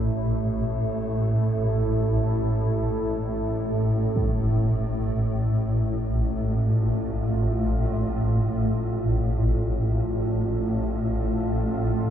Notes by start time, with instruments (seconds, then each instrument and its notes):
Already playing: synth drone A1 A2, ambient pad A3 E4 A4
4.16 ambient pad A3, impact
5.39 ambient pad F4
7.71 ambient pad A4